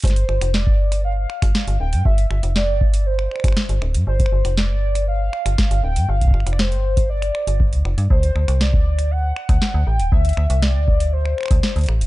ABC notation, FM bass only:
X:1
M:4/4
L:1/16
Q:1/4=119
K:C
V:1 name="FM bass" clef=bass
G,,,2 G,,, F,,,2 G,,,4- G,,, z G,,, z G,,, D,,, G,, | G,,,2 G,,, F,,,2 G,,,4- G,,, z G,,, z G,,, D,,, G,, | G,,,2 G,,, F,,,2 G,,,4- G,,, z G,,, z G,,, D,,, G,, | G,,,2 G,,, F,,,2 G,,,4- G,,, z G,,,2 D,, F,,, G,, |
D,,2 D,, C,,2 D,,4- D,, z D,, z D,, A,,, D,,, | D,,2 D,, C,,2 D,,4- D,, z D,, z D,, A,,, D,,, |]